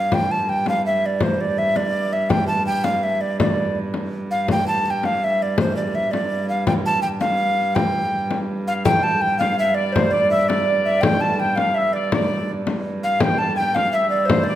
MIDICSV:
0, 0, Header, 1, 6, 480
1, 0, Start_track
1, 0, Tempo, 363636
1, 152, Time_signature, 6, 3, 24, 8
1, 19210, End_track
2, 0, Start_track
2, 0, Title_t, "Recorder"
2, 0, Program_c, 0, 74
2, 0, Note_on_c, 0, 77, 85
2, 183, Note_on_c, 0, 79, 91
2, 203, Note_off_c, 0, 77, 0
2, 413, Note_on_c, 0, 81, 84
2, 433, Note_off_c, 0, 79, 0
2, 647, Note_on_c, 0, 79, 94
2, 667, Note_off_c, 0, 81, 0
2, 881, Note_off_c, 0, 79, 0
2, 908, Note_on_c, 0, 77, 91
2, 1116, Note_off_c, 0, 77, 0
2, 1133, Note_on_c, 0, 76, 84
2, 1396, Note_on_c, 0, 74, 80
2, 1416, Note_off_c, 0, 76, 0
2, 1620, Note_on_c, 0, 72, 89
2, 1640, Note_off_c, 0, 74, 0
2, 1855, Note_on_c, 0, 74, 83
2, 1875, Note_off_c, 0, 72, 0
2, 2089, Note_on_c, 0, 76, 93
2, 2108, Note_off_c, 0, 74, 0
2, 2327, Note_on_c, 0, 74, 91
2, 2346, Note_off_c, 0, 76, 0
2, 2807, Note_on_c, 0, 76, 81
2, 2827, Note_off_c, 0, 74, 0
2, 3030, Note_on_c, 0, 79, 96
2, 3050, Note_off_c, 0, 76, 0
2, 3256, Note_off_c, 0, 79, 0
2, 3264, Note_on_c, 0, 81, 89
2, 3496, Note_off_c, 0, 81, 0
2, 3514, Note_on_c, 0, 79, 93
2, 3748, Note_on_c, 0, 77, 85
2, 3767, Note_off_c, 0, 79, 0
2, 4001, Note_on_c, 0, 76, 78
2, 4021, Note_off_c, 0, 77, 0
2, 4234, Note_on_c, 0, 74, 82
2, 4254, Note_off_c, 0, 76, 0
2, 4479, Note_off_c, 0, 74, 0
2, 4493, Note_on_c, 0, 74, 78
2, 4992, Note_off_c, 0, 74, 0
2, 5688, Note_on_c, 0, 77, 90
2, 5911, Note_off_c, 0, 77, 0
2, 5953, Note_on_c, 0, 79, 99
2, 6164, Note_off_c, 0, 79, 0
2, 6169, Note_on_c, 0, 81, 94
2, 6410, Note_off_c, 0, 81, 0
2, 6410, Note_on_c, 0, 81, 88
2, 6471, Note_on_c, 0, 79, 96
2, 6485, Note_off_c, 0, 81, 0
2, 6670, Note_on_c, 0, 77, 95
2, 6689, Note_off_c, 0, 79, 0
2, 6915, Note_on_c, 0, 76, 90
2, 6935, Note_off_c, 0, 77, 0
2, 7158, Note_on_c, 0, 74, 79
2, 7178, Note_off_c, 0, 76, 0
2, 7383, Note_off_c, 0, 74, 0
2, 7394, Note_on_c, 0, 72, 82
2, 7600, Note_off_c, 0, 72, 0
2, 7608, Note_on_c, 0, 74, 83
2, 7853, Note_on_c, 0, 76, 93
2, 7873, Note_off_c, 0, 74, 0
2, 8068, Note_on_c, 0, 74, 88
2, 8088, Note_off_c, 0, 76, 0
2, 8558, Note_off_c, 0, 74, 0
2, 8570, Note_on_c, 0, 77, 83
2, 8793, Note_off_c, 0, 77, 0
2, 8807, Note_on_c, 0, 79, 92
2, 8886, Note_off_c, 0, 79, 0
2, 9051, Note_on_c, 0, 81, 87
2, 9258, Note_off_c, 0, 81, 0
2, 9266, Note_on_c, 0, 79, 88
2, 9345, Note_off_c, 0, 79, 0
2, 9511, Note_on_c, 0, 77, 93
2, 10230, Note_on_c, 0, 79, 90
2, 10250, Note_off_c, 0, 77, 0
2, 11064, Note_off_c, 0, 79, 0
2, 11451, Note_on_c, 0, 77, 84
2, 11530, Note_off_c, 0, 77, 0
2, 11683, Note_on_c, 0, 79, 101
2, 11921, Note_on_c, 0, 81, 98
2, 11941, Note_off_c, 0, 79, 0
2, 12162, Note_on_c, 0, 79, 99
2, 12182, Note_off_c, 0, 81, 0
2, 12378, Note_off_c, 0, 79, 0
2, 12386, Note_on_c, 0, 77, 92
2, 12619, Note_off_c, 0, 77, 0
2, 12655, Note_on_c, 0, 76, 89
2, 12861, Note_on_c, 0, 74, 85
2, 12881, Note_off_c, 0, 76, 0
2, 13097, Note_on_c, 0, 72, 98
2, 13117, Note_off_c, 0, 74, 0
2, 13344, Note_on_c, 0, 74, 84
2, 13364, Note_off_c, 0, 72, 0
2, 13588, Note_off_c, 0, 74, 0
2, 13595, Note_on_c, 0, 76, 92
2, 13839, Note_on_c, 0, 74, 90
2, 13859, Note_off_c, 0, 76, 0
2, 14307, Note_off_c, 0, 74, 0
2, 14315, Note_on_c, 0, 76, 86
2, 14534, Note_on_c, 0, 79, 100
2, 14553, Note_off_c, 0, 76, 0
2, 14793, Note_on_c, 0, 81, 88
2, 14813, Note_off_c, 0, 79, 0
2, 15041, Note_on_c, 0, 79, 91
2, 15061, Note_off_c, 0, 81, 0
2, 15253, Note_on_c, 0, 77, 90
2, 15273, Note_off_c, 0, 79, 0
2, 15501, Note_on_c, 0, 76, 85
2, 15521, Note_off_c, 0, 77, 0
2, 15748, Note_on_c, 0, 74, 78
2, 15768, Note_off_c, 0, 76, 0
2, 15994, Note_off_c, 0, 74, 0
2, 16008, Note_on_c, 0, 74, 82
2, 16506, Note_off_c, 0, 74, 0
2, 17205, Note_on_c, 0, 77, 87
2, 17434, Note_on_c, 0, 79, 99
2, 17454, Note_off_c, 0, 77, 0
2, 17665, Note_on_c, 0, 81, 97
2, 17684, Note_off_c, 0, 79, 0
2, 17887, Note_off_c, 0, 81, 0
2, 17895, Note_on_c, 0, 79, 96
2, 18145, Note_on_c, 0, 77, 101
2, 18165, Note_off_c, 0, 79, 0
2, 18371, Note_off_c, 0, 77, 0
2, 18379, Note_on_c, 0, 76, 85
2, 18596, Note_off_c, 0, 76, 0
2, 18604, Note_on_c, 0, 74, 90
2, 18814, Note_on_c, 0, 72, 85
2, 18834, Note_off_c, 0, 74, 0
2, 19056, Note_on_c, 0, 74, 85
2, 19076, Note_off_c, 0, 72, 0
2, 19210, Note_off_c, 0, 74, 0
2, 19210, End_track
3, 0, Start_track
3, 0, Title_t, "Shawm"
3, 0, Program_c, 1, 111
3, 11452, Note_on_c, 1, 77, 69
3, 11673, Note_off_c, 1, 77, 0
3, 11683, Note_on_c, 1, 79, 82
3, 12354, Note_off_c, 1, 79, 0
3, 12394, Note_on_c, 1, 77, 80
3, 12847, Note_off_c, 1, 77, 0
3, 12889, Note_on_c, 1, 74, 73
3, 13111, Note_off_c, 1, 74, 0
3, 13142, Note_on_c, 1, 72, 74
3, 13358, Note_off_c, 1, 72, 0
3, 13369, Note_on_c, 1, 74, 77
3, 13591, Note_off_c, 1, 74, 0
3, 13617, Note_on_c, 1, 76, 76
3, 13829, Note_off_c, 1, 76, 0
3, 13837, Note_on_c, 1, 74, 80
3, 14510, Note_off_c, 1, 74, 0
3, 14573, Note_on_c, 1, 79, 86
3, 14805, Note_on_c, 1, 81, 87
3, 14825, Note_off_c, 1, 79, 0
3, 15044, Note_off_c, 1, 81, 0
3, 15056, Note_on_c, 1, 79, 81
3, 15273, Note_off_c, 1, 79, 0
3, 15304, Note_on_c, 1, 77, 85
3, 15548, Note_on_c, 1, 76, 76
3, 15568, Note_off_c, 1, 77, 0
3, 15775, Note_off_c, 1, 76, 0
3, 15780, Note_on_c, 1, 74, 74
3, 15995, Note_off_c, 1, 74, 0
3, 16013, Note_on_c, 1, 74, 75
3, 16509, Note_off_c, 1, 74, 0
3, 17205, Note_on_c, 1, 77, 75
3, 17446, Note_on_c, 1, 79, 79
3, 17466, Note_off_c, 1, 77, 0
3, 17674, Note_off_c, 1, 79, 0
3, 17682, Note_on_c, 1, 81, 84
3, 17930, Note_on_c, 1, 79, 83
3, 17950, Note_off_c, 1, 81, 0
3, 18162, Note_off_c, 1, 79, 0
3, 18175, Note_on_c, 1, 77, 82
3, 18388, Note_off_c, 1, 77, 0
3, 18409, Note_on_c, 1, 76, 79
3, 18847, Note_off_c, 1, 76, 0
3, 18886, Note_on_c, 1, 72, 79
3, 19102, Note_off_c, 1, 72, 0
3, 19125, Note_on_c, 1, 74, 78
3, 19210, Note_off_c, 1, 74, 0
3, 19210, End_track
4, 0, Start_track
4, 0, Title_t, "Harp"
4, 0, Program_c, 2, 46
4, 0, Note_on_c, 2, 74, 68
4, 927, Note_off_c, 2, 74, 0
4, 11445, Note_on_c, 2, 77, 72
4, 11677, Note_on_c, 2, 79, 88
4, 11930, Note_on_c, 2, 81, 80
4, 12164, Note_off_c, 2, 79, 0
4, 12169, Note_on_c, 2, 79, 73
4, 12415, Note_off_c, 2, 77, 0
4, 12421, Note_on_c, 2, 77, 75
4, 12665, Note_on_c, 2, 76, 78
4, 12745, Note_off_c, 2, 77, 0
4, 12909, Note_on_c, 2, 74, 70
4, 13147, Note_on_c, 2, 72, 76
4, 13363, Note_off_c, 2, 74, 0
4, 13369, Note_on_c, 2, 74, 75
4, 13603, Note_off_c, 2, 76, 0
4, 13608, Note_on_c, 2, 76, 72
4, 13843, Note_off_c, 2, 81, 0
4, 13864, Note_off_c, 2, 74, 0
4, 13869, Note_on_c, 2, 74, 72
4, 14096, Note_off_c, 2, 74, 0
4, 14102, Note_on_c, 2, 74, 69
4, 14219, Note_off_c, 2, 79, 0
4, 14317, Note_off_c, 2, 76, 0
4, 14323, Note_on_c, 2, 76, 72
4, 14582, Note_on_c, 2, 79, 80
4, 14817, Note_on_c, 2, 81, 82
4, 15049, Note_off_c, 2, 79, 0
4, 15289, Note_on_c, 2, 77, 72
4, 15368, Note_off_c, 2, 76, 0
4, 15518, Note_on_c, 2, 76, 74
4, 15597, Note_off_c, 2, 77, 0
4, 15760, Note_off_c, 2, 72, 0
4, 15770, Note_off_c, 2, 74, 0
4, 15775, Note_on_c, 2, 74, 67
4, 15992, Note_off_c, 2, 74, 0
4, 15997, Note_on_c, 2, 74, 74
4, 16293, Note_off_c, 2, 76, 0
4, 16298, Note_on_c, 2, 76, 60
4, 16730, Note_off_c, 2, 81, 0
4, 17197, Note_on_c, 2, 77, 70
4, 17276, Note_off_c, 2, 76, 0
4, 17413, Note_on_c, 2, 79, 82
4, 17655, Note_on_c, 2, 81, 87
4, 18135, Note_off_c, 2, 77, 0
4, 18141, Note_on_c, 2, 77, 73
4, 18393, Note_on_c, 2, 76, 73
4, 18435, Note_off_c, 2, 74, 0
4, 18472, Note_off_c, 2, 77, 0
4, 18616, Note_on_c, 2, 74, 70
4, 18856, Note_on_c, 2, 72, 74
4, 19210, Note_off_c, 2, 72, 0
4, 19210, Note_off_c, 2, 74, 0
4, 19210, Note_off_c, 2, 76, 0
4, 19210, Note_off_c, 2, 79, 0
4, 19210, Note_off_c, 2, 81, 0
4, 19210, End_track
5, 0, Start_track
5, 0, Title_t, "Hurdy-gurdy"
5, 0, Program_c, 3, 110
5, 127, Note_on_c, 3, 43, 61
5, 5921, Note_off_c, 3, 43, 0
5, 5921, Note_on_c, 3, 43, 65
5, 11681, Note_off_c, 3, 43, 0
5, 11681, Note_on_c, 3, 43, 69
5, 17444, Note_off_c, 3, 43, 0
5, 17444, Note_on_c, 3, 43, 68
5, 19210, Note_off_c, 3, 43, 0
5, 19210, End_track
6, 0, Start_track
6, 0, Title_t, "Frame drum"
6, 156, Note_on_c, 9, 64, 77
6, 288, Note_off_c, 9, 64, 0
6, 637, Note_on_c, 9, 64, 25
6, 769, Note_off_c, 9, 64, 0
6, 873, Note_on_c, 9, 64, 61
6, 1005, Note_off_c, 9, 64, 0
6, 1590, Note_on_c, 9, 64, 73
6, 1722, Note_off_c, 9, 64, 0
6, 2087, Note_on_c, 9, 64, 26
6, 2219, Note_off_c, 9, 64, 0
6, 2321, Note_on_c, 9, 64, 60
6, 2453, Note_off_c, 9, 64, 0
6, 3037, Note_on_c, 9, 64, 83
6, 3169, Note_off_c, 9, 64, 0
6, 3520, Note_on_c, 9, 64, 27
6, 3652, Note_off_c, 9, 64, 0
6, 3752, Note_on_c, 9, 64, 66
6, 3884, Note_off_c, 9, 64, 0
6, 4485, Note_on_c, 9, 64, 87
6, 4617, Note_off_c, 9, 64, 0
6, 4953, Note_on_c, 9, 64, 26
6, 5085, Note_off_c, 9, 64, 0
6, 5199, Note_on_c, 9, 64, 62
6, 5331, Note_off_c, 9, 64, 0
6, 5431, Note_on_c, 9, 64, 25
6, 5563, Note_off_c, 9, 64, 0
6, 5675, Note_on_c, 9, 64, 24
6, 5807, Note_off_c, 9, 64, 0
6, 5917, Note_on_c, 9, 64, 79
6, 6049, Note_off_c, 9, 64, 0
6, 6409, Note_on_c, 9, 64, 25
6, 6541, Note_off_c, 9, 64, 0
6, 6645, Note_on_c, 9, 64, 62
6, 6777, Note_off_c, 9, 64, 0
6, 7363, Note_on_c, 9, 64, 88
6, 7495, Note_off_c, 9, 64, 0
6, 7856, Note_on_c, 9, 64, 26
6, 7988, Note_off_c, 9, 64, 0
6, 8096, Note_on_c, 9, 64, 69
6, 8228, Note_off_c, 9, 64, 0
6, 8803, Note_on_c, 9, 64, 88
6, 8935, Note_off_c, 9, 64, 0
6, 9283, Note_on_c, 9, 64, 27
6, 9415, Note_off_c, 9, 64, 0
6, 9515, Note_on_c, 9, 64, 68
6, 9647, Note_off_c, 9, 64, 0
6, 10243, Note_on_c, 9, 64, 82
6, 10375, Note_off_c, 9, 64, 0
6, 10964, Note_on_c, 9, 64, 64
6, 11096, Note_off_c, 9, 64, 0
6, 11688, Note_on_c, 9, 64, 95
6, 11820, Note_off_c, 9, 64, 0
6, 12418, Note_on_c, 9, 64, 67
6, 12550, Note_off_c, 9, 64, 0
6, 13142, Note_on_c, 9, 64, 88
6, 13274, Note_off_c, 9, 64, 0
6, 13624, Note_on_c, 9, 64, 29
6, 13756, Note_off_c, 9, 64, 0
6, 13857, Note_on_c, 9, 64, 74
6, 13989, Note_off_c, 9, 64, 0
6, 14562, Note_on_c, 9, 64, 101
6, 14694, Note_off_c, 9, 64, 0
6, 15040, Note_on_c, 9, 64, 31
6, 15172, Note_off_c, 9, 64, 0
6, 15279, Note_on_c, 9, 64, 72
6, 15411, Note_off_c, 9, 64, 0
6, 16000, Note_on_c, 9, 64, 93
6, 16132, Note_off_c, 9, 64, 0
6, 16478, Note_on_c, 9, 64, 29
6, 16610, Note_off_c, 9, 64, 0
6, 16722, Note_on_c, 9, 64, 79
6, 16854, Note_off_c, 9, 64, 0
6, 17429, Note_on_c, 9, 64, 99
6, 17561, Note_off_c, 9, 64, 0
6, 17929, Note_on_c, 9, 64, 32
6, 18061, Note_off_c, 9, 64, 0
6, 18160, Note_on_c, 9, 64, 73
6, 18292, Note_off_c, 9, 64, 0
6, 18870, Note_on_c, 9, 64, 96
6, 19002, Note_off_c, 9, 64, 0
6, 19210, End_track
0, 0, End_of_file